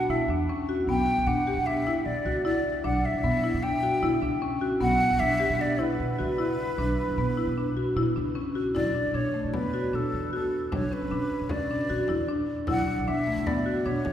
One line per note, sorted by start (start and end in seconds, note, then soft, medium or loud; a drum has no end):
0.00 0.12 F#5 medium
0.09 0.18 B2 medium
0.09 0.23 E4 medium
0.09 0.30 E5 medium
0.28 0.46 E2 medium
0.28 0.43 D4 medium
0.49 0.62 C#4 medium
0.69 0.82 F#4 medium
0.87 1.05 B1 medium
0.87 1.14 B3 medium
0.87 1.28 G5 medium
1.17 1.26 B1 medium
1.27 1.45 B2 medium
1.27 1.40 D4 medium
1.27 1.68 F#5 medium
1.47 1.60 G4 medium
1.57 2.02 B2 medium
1.66 1.80 D4 medium
1.66 2.07 E5 medium
1.87 2.13 E4 medium
2.05 2.15 B2 medium
2.05 2.45 D5 medium
2.25 2.43 C#2 medium
2.25 2.39 F#4 medium
2.45 2.71 E4 medium
2.45 2.86 D5 medium
2.84 3.02 B1 medium
2.84 3.10 D4 medium
2.84 3.07 F#5 medium
3.05 3.64 E5 medium
3.14 3.23 B1 medium
3.24 3.42 B2 medium
3.24 3.37 B3 medium
3.44 3.57 E4 medium
3.54 3.99 B2 medium
3.63 3.76 D4 medium
3.63 4.42 G5 medium
3.83 3.96 F#4 medium
4.02 4.11 B2 medium
4.02 4.16 E4 medium
4.22 4.40 C#2 medium
4.22 4.35 D4 medium
4.42 4.55 C#4 medium
4.61 4.74 F#4 medium
4.80 4.98 B1 medium
4.80 5.07 B3 medium
4.80 5.21 F#5 medium
5.11 5.20 B1 medium
5.20 5.38 B2 medium
5.20 5.33 D4 medium
5.20 5.63 E5 medium
5.40 5.53 G4 medium
5.50 5.95 B2 medium
5.59 5.72 D4 medium
5.59 5.83 D5 medium
5.79 6.05 E4 medium
5.79 8.37 B4 medium
6.00 6.08 B2 medium
6.19 6.37 C#2 medium
6.19 6.32 F#4 medium
6.38 6.64 E4 medium
6.78 6.96 B1 medium
6.78 7.04 D4 medium
7.08 7.17 B1 medium
7.17 7.35 B2 medium
7.17 7.31 B3 medium
7.37 7.50 E4 medium
7.47 7.92 B2 medium
7.58 7.70 D4 medium
7.77 7.90 F#4 medium
7.96 8.05 B2 medium
7.96 8.09 E4 medium
8.16 8.34 C#2 medium
8.16 8.29 D4 medium
8.35 8.48 C#4 medium
8.55 8.68 F#4 medium
8.75 8.93 B1 medium
8.75 8.88 E4 medium
8.75 9.17 D5 medium
8.75 frame drum soft
8.95 9.07 D4 soft
9.05 9.14 B1 medium
9.14 9.32 B2 medium
9.14 9.27 D4 medium
9.14 9.56 C#5 medium
9.14 frame drum soft
9.34 9.47 A3 soft
9.34 frame drum soft
9.44 9.89 B2 medium
9.54 9.67 B3 medium
9.54 9.97 B4 medium
9.54 frame drum medium
9.74 9.86 F#4 medium
9.93 10.02 B2 medium
9.93 10.19 D4 medium
9.93 10.33 A4 medium
10.13 10.31 E2 medium
10.33 10.58 F#4 medium
10.33 10.70 A4 medium
10.72 10.90 B1 medium
10.72 10.85 D4 medium
10.72 10.95 C#5 medium
10.72 frame drum medium
10.91 11.04 C#4 medium
10.91 11.52 B4 medium
11.02 11.10 B1 medium
11.11 11.29 B2 medium
11.11 11.37 D4 medium
11.11 frame drum soft
11.30 frame drum soft
11.41 11.86 B2 medium
11.49 11.64 C#4 medium
11.49 12.29 D5 medium
11.49 frame drum medium
11.71 11.83 D4 medium
11.90 11.99 B2 medium
11.90 12.02 F#4 medium
12.08 12.27 E2 medium
12.08 12.22 E4 medium
12.08 frame drum soft
12.28 12.54 D4 medium
12.67 12.86 B1 medium
12.67 12.81 E4 medium
12.67 13.09 F#5 medium
12.67 frame drum medium
12.88 13.01 D4 soft
12.98 13.07 B1 medium
13.07 13.25 B2 medium
13.07 13.20 D4 medium
13.07 13.48 E5 medium
13.07 frame drum soft
13.27 13.40 A3 medium
13.27 frame drum soft
13.37 13.82 B2 medium
13.47 13.60 B3 medium
13.47 13.87 D5 medium
13.47 frame drum medium
13.66 13.79 F#4 medium
13.85 13.94 B2 medium
13.85 14.12 D4 medium
13.85 14.13 C#5 medium
14.05 14.13 E2 medium
14.05 frame drum soft